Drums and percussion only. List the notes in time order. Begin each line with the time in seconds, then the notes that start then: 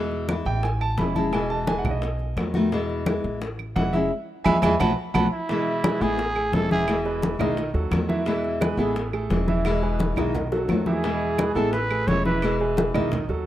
0.12 high conga
0.29 high bongo, high conga, claves
0.47 high conga
0.63 high bongo, high conga
0.81 high conga, claves
0.98 high bongo, low bongo, high conga
1.16 high conga
1.33 high bongo, high conga, claves
1.50 high bongo, high conga
1.67 high bongo, high conga
1.85 high conga, low conga, claves
2.02 high bongo, high conga
2.19 high bongo, high conga
2.37 high bongo, low bongo, high conga, claves
2.54 high bongo, high conga
2.72 high bongo, high conga
2.89 high conga
3.06 high bongo, high conga, claves
3.25 high conga
3.42 high bongo, high conga
3.59 high conga, claves
3.76 high bongo, low bongo, high conga
3.94 high conga
4.46 low bongo, high conga, claves
4.63 low bongo, high conga, claves
4.80 low bongo, high conga, claves
5.15 low bongo, high conga, claves
5.49 high bongo, high conga
5.67 high conga
5.84 high bongo, high conga, claves
6.02 high conga
6.19 high bongo, high conga
6.36 high conga, claves
6.53 high bongo, low bongo, high conga
6.71 high conga
6.88 high bongo, high conga, claves
7.05 high bongo, high conga
7.22 high bongo, high conga
7.40 high conga, low conga, claves
7.57 high bongo, high conga
7.75 high bongo, high conga
7.92 high bongo, low bongo, high conga, claves
8.09 high bongo, high conga
8.26 high bongo, high conga
8.44 high conga
8.61 high bongo, high conga, claves
8.79 high conga
8.96 high bongo, high conga
9.13 high conga, claves
9.30 high bongo, low bongo, high conga
9.48 high conga
9.65 high bongo, high conga, claves
9.82 high bongo, high conga
9.99 high bongo, high conga
10.17 high conga, low conga, claves
10.34 high bongo, high conga, low conga
10.52 high bongo, high conga
10.69 low bongo, high conga, claves
10.86 low bongo, high conga
11.04 high bongo, high conga
11.22 high conga
11.38 high bongo, high conga, claves
11.57 high conga
11.73 high bongo, high conga
11.91 high conga, claves
12.08 high bongo, low bongo, high conga
12.25 high conga
12.42 high bongo, high conga, claves
12.60 high bongo, high conga
12.77 high bongo, high conga
12.95 high conga, low conga, claves
13.12 high bongo, high conga, low conga
13.29 high bongo, high conga